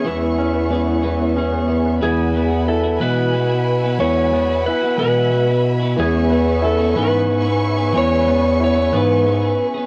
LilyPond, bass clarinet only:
\new Staff \with { instrumentName = "Bass clarinet" } { \clef bass \time 6/8 \key e \mixolydian \tempo 4. = 61 e,2. | e,4. b,4. | e,4 r8 b,4. | e,4. gis,4. |
e,4. gis,4 r8 | }